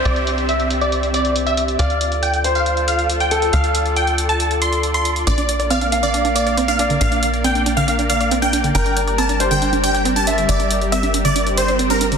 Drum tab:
HH |xxxxxxxxxxxxxxxx|xxxxxxxxxxxxxxxx|xxxxxxxxxxxxxxxx|xxxxxxxxxxxxxxxx|

HH |xxxxxxxxxxxxxxxx|xxxxxxxxxxxxxxxx|xxxxxxxxxxxxxxxx|